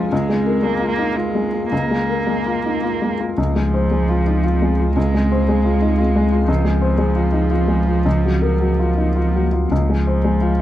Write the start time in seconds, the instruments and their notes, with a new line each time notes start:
Already playing: felt piano C#2 G#3 D#4 F4 C5, cello F3, ambient pad C4 G#4 F5
0.11 felt piano C#2, cello G#3, ambient pad A#3
0.29 felt piano G#3
0.46 felt piano A#4
0.63 felt piano G#3, cello A#3
0.80 felt piano F4
0.89 cello A#3
0.98 felt piano D#4
1.16 cello G#3, felt piano F4
1.35 felt piano G#3
1.53 felt piano F4
1.71 felt piano C#2, cello A#3
1.91 felt piano G#3
2.09 felt piano A#4
2.27 felt piano G#3
2.46 felt piano F4
2.65 felt piano D#4
2.83 felt piano F4
3.01 felt piano G#3
3.20 felt piano F4
3.37 felt piano C#2, sub bass C#2, cello F3, ambient pad C4 G#4 F5
3.55 felt piano G#3
3.74 felt piano C5
3.91 felt piano G#3
4.09 felt piano F4
4.27 felt piano D#4
4.43 felt piano F4
4.62 felt piano G#3
4.79 felt piano F4
4.96 felt piano C#2, cello G#3
5.14 felt piano G#3
5.32 felt piano C5
5.48 felt piano G#3
5.65 felt piano F4
5.82 felt piano D#4
5.98 felt piano F4
6.16 felt piano G#3
6.32 felt piano F4
6.48 felt piano C#2, cello F3
6.65 felt piano G#3
6.81 felt piano C5
6.98 felt piano G#3
7.15 felt piano F4
7.33 felt piano D#4
7.51 felt piano F4
7.68 felt piano G#3
7.87 felt piano F4
8.05 felt piano C#2, ambient pad A#3 F#5
8.24 felt piano F#3
8.42 felt piano A#4
8.60 felt piano F#3
8.79 felt piano F4
8.97 felt piano D#4
9.16 felt piano F4
9.35 felt piano F#3
9.53 felt piano F4
9.70 sub bass C#2, felt piano C#2, cello F3, ambient pad C4 G#4 F5
9.89 felt piano G#3
10.07 felt piano C5
10.24 felt piano G#3
10.41 felt piano F4